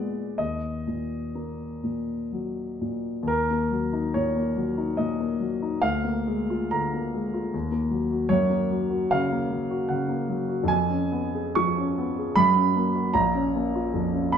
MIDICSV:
0, 0, Header, 1, 2, 480
1, 0, Start_track
1, 0, Key_signature, -6, "minor"
1, 0, Tempo, 961538
1, 195, Time_signature, 3, 2, 24, 8
1, 1636, Tempo, 843882
1, 3076, Tempo, 906344
1, 3556, Tempo, 825309
1, 4036, Tempo, 788436
1, 5956, Tempo, 870827
1, 6436, Tempo, 789474
1, 8146, End_track
2, 0, Start_track
2, 0, Title_t, "Grand piano"
2, 0, Program_c, 0, 0
2, 0, Control_c, 0, 64, 127
2, 0, Note_on_c, 0, 46, 40
2, 0, Note_on_c, 0, 56, 32
2, 0, Note_on_c, 0, 59, 32
2, 0, Note_on_c, 0, 74, 64
2, 176, Note_off_c, 0, 56, 0
2, 177, Note_off_c, 0, 59, 0
2, 181, Note_off_c, 0, 46, 0
2, 190, Note_on_c, 0, 75, 64
2, 193, Note_off_c, 0, 74, 0
2, 194, Note_on_c, 0, 39, 39
2, 206, Control_c, 0, 64, 0
2, 282, Control_c, 0, 64, 127
2, 436, Note_on_c, 0, 46, 29
2, 675, Note_on_c, 0, 58, 31
2, 814, Note_off_c, 0, 46, 0
2, 916, Note_on_c, 0, 46, 28
2, 1056, Note_off_c, 0, 58, 0
2, 1161, Note_on_c, 0, 54, 29
2, 1304, Note_off_c, 0, 46, 0
2, 1398, Note_off_c, 0, 75, 0
2, 1405, Note_on_c, 0, 46, 29
2, 1550, Note_off_c, 0, 54, 0
2, 1604, Note_off_c, 0, 39, 0
2, 1611, Note_on_c, 0, 39, 49
2, 1635, Note_on_c, 0, 70, 75
2, 1637, Note_off_c, 0, 46, 0
2, 1647, Control_c, 0, 64, 0
2, 1739, Control_c, 0, 64, 127
2, 1766, Note_on_c, 0, 58, 34
2, 1881, Note_on_c, 0, 54, 35
2, 1958, Note_off_c, 0, 58, 0
2, 2008, Note_on_c, 0, 63, 39
2, 2076, Note_off_c, 0, 54, 0
2, 2124, Note_off_c, 0, 70, 0
2, 2128, Note_on_c, 0, 73, 68
2, 2135, Note_on_c, 0, 46, 36
2, 2199, Note_off_c, 0, 63, 0
2, 2252, Note_on_c, 0, 58, 35
2, 2322, Note_off_c, 0, 46, 0
2, 2370, Note_on_c, 0, 54, 35
2, 2439, Note_off_c, 0, 58, 0
2, 2489, Note_on_c, 0, 63, 37
2, 2556, Note_off_c, 0, 54, 0
2, 2600, Note_on_c, 0, 75, 61
2, 2602, Note_off_c, 0, 73, 0
2, 2606, Note_on_c, 0, 46, 36
2, 2674, Note_off_c, 0, 63, 0
2, 2728, Note_on_c, 0, 58, 35
2, 2792, Note_off_c, 0, 46, 0
2, 2845, Note_on_c, 0, 54, 37
2, 2912, Note_off_c, 0, 58, 0
2, 2970, Note_on_c, 0, 63, 35
2, 3031, Note_off_c, 0, 54, 0
2, 3038, Note_off_c, 0, 39, 0
2, 3074, Note_off_c, 0, 75, 0
2, 3079, Note_on_c, 0, 77, 76
2, 3082, Note_off_c, 0, 63, 0
2, 3084, Control_c, 0, 64, 0
2, 3085, Note_on_c, 0, 38, 53
2, 3189, Control_c, 0, 64, 127
2, 3201, Note_on_c, 0, 58, 36
2, 3320, Note_on_c, 0, 56, 37
2, 3391, Note_off_c, 0, 58, 0
2, 3442, Note_on_c, 0, 65, 42
2, 3511, Note_off_c, 0, 56, 0
2, 3553, Note_on_c, 0, 82, 66
2, 3557, Note_off_c, 0, 77, 0
2, 3559, Note_on_c, 0, 50, 33
2, 3635, Note_off_c, 0, 65, 0
2, 3686, Note_on_c, 0, 58, 36
2, 3756, Note_off_c, 0, 50, 0
2, 3802, Note_on_c, 0, 56, 34
2, 3875, Note_off_c, 0, 58, 0
2, 3919, Note_on_c, 0, 65, 36
2, 3989, Note_off_c, 0, 56, 0
2, 4017, Note_off_c, 0, 38, 0
2, 4034, Note_off_c, 0, 65, 0
2, 4035, Note_on_c, 0, 39, 53
2, 4044, Control_c, 0, 64, 0
2, 4122, Control_c, 0, 64, 127
2, 4144, Note_on_c, 0, 58, 37
2, 4259, Note_on_c, 0, 54, 37
2, 4271, Note_off_c, 0, 82, 0
2, 4338, Note_off_c, 0, 58, 0
2, 4383, Note_on_c, 0, 66, 37
2, 4456, Note_off_c, 0, 54, 0
2, 4492, Note_on_c, 0, 73, 80
2, 4496, Note_off_c, 0, 39, 0
2, 4496, Note_on_c, 0, 42, 53
2, 4506, Note_off_c, 0, 66, 0
2, 4521, Control_c, 0, 64, 0
2, 4599, Control_c, 0, 64, 127
2, 4621, Note_on_c, 0, 58, 39
2, 4745, Note_on_c, 0, 54, 40
2, 4819, Note_off_c, 0, 58, 0
2, 4862, Note_on_c, 0, 66, 41
2, 4941, Note_off_c, 0, 54, 0
2, 4984, Note_off_c, 0, 73, 0
2, 4991, Note_on_c, 0, 77, 76
2, 4995, Note_on_c, 0, 49, 37
2, 5060, Note_off_c, 0, 66, 0
2, 5118, Note_on_c, 0, 58, 34
2, 5186, Note_off_c, 0, 49, 0
2, 5231, Note_on_c, 0, 54, 37
2, 5307, Note_off_c, 0, 58, 0
2, 5353, Note_on_c, 0, 66, 43
2, 5423, Note_off_c, 0, 54, 0
2, 5464, Note_on_c, 0, 78, 62
2, 5470, Note_off_c, 0, 77, 0
2, 5471, Note_on_c, 0, 49, 38
2, 5543, Note_off_c, 0, 66, 0
2, 5586, Note_on_c, 0, 58, 36
2, 5661, Note_off_c, 0, 49, 0
2, 5710, Note_on_c, 0, 54, 44
2, 5779, Note_off_c, 0, 58, 0
2, 5828, Note_on_c, 0, 66, 41
2, 5904, Note_off_c, 0, 54, 0
2, 5920, Note_on_c, 0, 41, 55
2, 5922, Note_off_c, 0, 42, 0
2, 5947, Note_on_c, 0, 80, 88
2, 5949, Note_off_c, 0, 78, 0
2, 5953, Note_off_c, 0, 66, 0
2, 5963, Control_c, 0, 64, 0
2, 6051, Control_c, 0, 64, 127
2, 6070, Note_on_c, 0, 61, 37
2, 6189, Note_on_c, 0, 59, 42
2, 6267, Note_off_c, 0, 61, 0
2, 6316, Note_on_c, 0, 68, 39
2, 6386, Note_off_c, 0, 59, 0
2, 6429, Note_on_c, 0, 85, 76
2, 6431, Note_off_c, 0, 80, 0
2, 6435, Note_on_c, 0, 53, 43
2, 6510, Note_off_c, 0, 68, 0
2, 6565, Note_on_c, 0, 61, 37
2, 6633, Note_off_c, 0, 53, 0
2, 6689, Note_on_c, 0, 59, 41
2, 6754, Note_off_c, 0, 61, 0
2, 6812, Note_on_c, 0, 68, 39
2, 6873, Note_off_c, 0, 59, 0
2, 6875, Note_off_c, 0, 41, 0
2, 6914, Note_off_c, 0, 85, 0
2, 6916, Note_on_c, 0, 83, 91
2, 6921, Note_on_c, 0, 42, 55
2, 6923, Note_off_c, 0, 68, 0
2, 6927, Control_c, 0, 64, 0
2, 7006, Control_c, 0, 64, 127
2, 7042, Note_on_c, 0, 61, 39
2, 7163, Note_on_c, 0, 58, 40
2, 7230, Note_off_c, 0, 61, 0
2, 7279, Note_on_c, 0, 66, 43
2, 7352, Note_off_c, 0, 58, 0
2, 7384, Note_off_c, 0, 42, 0
2, 7390, Note_on_c, 0, 82, 80
2, 7396, Note_off_c, 0, 83, 0
2, 7396, Note_on_c, 0, 34, 57
2, 7398, Note_off_c, 0, 66, 0
2, 7407, Control_c, 0, 64, 0
2, 7485, Control_c, 0, 64, 127
2, 7520, Note_on_c, 0, 61, 41
2, 7647, Note_on_c, 0, 58, 40
2, 7709, Note_off_c, 0, 61, 0
2, 7766, Note_on_c, 0, 65, 44
2, 7831, Note_off_c, 0, 58, 0
2, 7878, Note_on_c, 0, 41, 42
2, 7950, Note_off_c, 0, 65, 0
2, 7996, Note_on_c, 0, 61, 39
2, 8067, Note_off_c, 0, 41, 0
2, 8110, Note_off_c, 0, 82, 0
2, 8113, Note_on_c, 0, 83, 78
2, 8117, Note_on_c, 0, 58, 41
2, 8146, Note_off_c, 0, 34, 0
2, 8146, Note_off_c, 0, 58, 0
2, 8146, Note_off_c, 0, 61, 0
2, 8146, Note_off_c, 0, 83, 0
2, 8146, End_track
0, 0, End_of_file